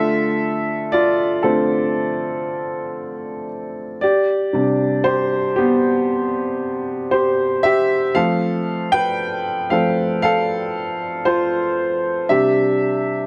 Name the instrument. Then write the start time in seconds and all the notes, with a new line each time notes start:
grand piano
Already playing: D3 A3 F4 A4 E5
0.92 F4 D5
1.43 D3 A3 C4 F4 A4
4.01 G4 D5
4.53 C3 G3 D4
5.04 G4 C5
5.56 B3 G4
7.11 G4 C5
7.63 G4 E5
8.15 F3 A3 C4 A4 F5
8.92 B4 G5
9.70 F3 A3 C4 A4 F5
10.22 A4 F5
11.25 F4 C5
12.29 C3 G3 D4 G4 E5